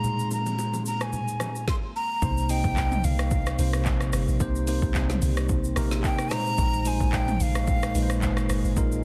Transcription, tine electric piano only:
0.00 1.63 A#2 medium
0.00 1.64 G#3 medium
0.00 1.64 D#4 medium
0.00 1.65 G#4 medium
2.22 2.45 C3 medium
2.22 2.45 A#3 medium
2.22 2.45 D#4 medium
2.22 2.45 C5 medium
2.49 3.37 C3 medium
2.49 3.37 A#3 medium
2.49 3.38 D#4 medium
2.49 3.38 D#5 medium
3.58 4.25 C3 medium
3.58 4.25 A#3 medium
3.58 4.25 D#4 medium
3.58 4.26 C5 medium
4.40 4.63 C3 loud
4.40 4.63 A#3 medium
4.40 4.63 D#4 medium
4.40 4.63 C5 loud
4.68 5.55 C3 medium
4.68 5.56 A#3 medium
4.68 5.56 D#4 medium
4.68 5.56 C5 medium
5.76 6.31 C3 loud
5.76 6.31 A#3 medium
5.76 6.30 D#4 medium
5.76 6.32 A#4 loud
6.31 6.76 A#2 medium
6.31 6.76 G#3 medium
6.31 6.76 D#4 medium
6.31 6.76 C5 medium
6.86 7.74 A#2 medium
6.86 7.74 G#3 medium
6.86 7.74 D#4 medium
6.86 7.74 C5 medium
7.95 8.61 A#2 medium
7.95 8.62 G#3 medium
7.95 8.62 D#4 medium
7.95 8.03 B4 medium
8.02 8.65 C5 medium
8.77 8.99 A#2 medium
8.77 8.99 G#3 medium
8.77 9.00 D#4 medium
8.77 9.00 A#4 loud

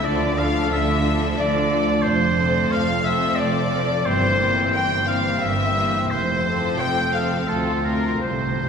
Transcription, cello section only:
0.05 0.64 D3 medium
0.72 1.31 D3 medium
1.38 1.96 D3 medium
2.04 2.63 F2 medium
2.71 3.30 F2 medium
3.38 3.98 F2 medium
4.06 4.65 G2 medium
4.73 5.32 G2 medium
5.41 6.02 G2 medium
6.10 6.70 F2 medium
6.79 7.40 F2 medium
7.49 8.13 D2 medium
8.24 8.69 C2 medium

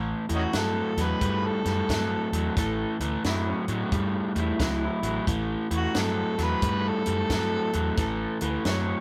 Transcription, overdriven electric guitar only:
0.00 0.25 A2 medium
0.00 0.25 E3 medium
0.29 0.51 A2 medium
0.29 0.51 E3 medium
0.53 0.93 A2 medium
0.53 0.93 F#3 medium
0.97 1.19 A2 medium
0.97 1.19 F#3 medium
1.22 1.61 A2 medium
1.22 1.61 G3 medium
1.65 1.86 A2 medium
1.65 1.87 G3 medium
1.90 2.28 A2 medium
1.90 2.29 F#3 medium
2.33 2.54 A2 medium
2.33 2.55 F#3 medium
2.57 2.96 A2 medium
2.57 2.96 E3 medium
3.01 3.22 A2 medium
3.01 3.22 E3 medium
3.25 3.64 A2 medium
3.25 3.64 F#3 medium
3.69 3.90 A2 medium
3.69 3.90 F#3 medium
3.92 4.31 A2 medium
3.92 4.32 G3 medium
4.35 4.57 A2 medium
4.35 4.57 G3 medium
4.59 4.99 A2 medium
4.59 4.99 F#3 medium
5.03 5.25 A2 medium
5.03 5.25 F#3 medium
5.27 5.66 A2 medium
5.27 5.67 E3 medium
5.71 5.92 A2 medium
5.71 5.93 E3 medium
5.94 6.34 A2 medium
5.94 6.34 F#3 medium
6.38 6.60 A2 medium
6.38 6.60 F#3 medium
6.62 7.02 A2 medium
6.62 7.02 G3 medium
7.06 7.28 A2 medium
7.06 7.28 G3 medium
7.30 7.69 A2 medium
7.30 7.70 F#3 medium
7.73 7.95 A2 medium
7.73 7.95 F#3 medium
7.98 8.37 A2 medium
7.98 8.37 E3 medium
8.41 8.63 A2 medium
8.41 8.63 E3 medium
8.65 9.01 A2 medium
8.65 9.01 F#3 medium

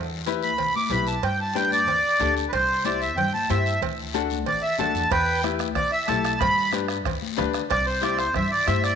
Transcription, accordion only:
0.43 0.74 B5 medium
0.76 0.91 D6 medium
0.92 1.07 B5 medium
1.07 1.23 A5 medium
1.24 1.39 G5 medium
1.41 1.56 A5 medium
1.55 1.71 G5 medium
1.72 2.34 D5 loud
2.49 2.51 B4 medium
2.53 2.84 C5 medium
2.85 3.01 D5 medium
3.01 3.17 E5 medium
3.17 3.33 G5 medium
3.34 3.49 A5 medium
3.50 3.81 E5 medium
4.47 4.63 D5 medium
4.62 4.78 E5 medium
4.79 5.10 A5 medium
5.11 5.41 B4 medium
5.11 5.43 G5 medium
5.75 5.91 D5 loud
5.92 6.08 E5 medium
6.07 6.39 A5 medium
6.39 6.71 B5 loud
7.71 7.86 D5 loud
7.86 8.02 C5 medium
8.02 8.18 D5 medium
8.18 8.34 C5 medium
8.36 8.51 E5 medium
8.51 8.67 D5 medium
8.67 8.83 E5 loud
8.84 8.95 D5 medium

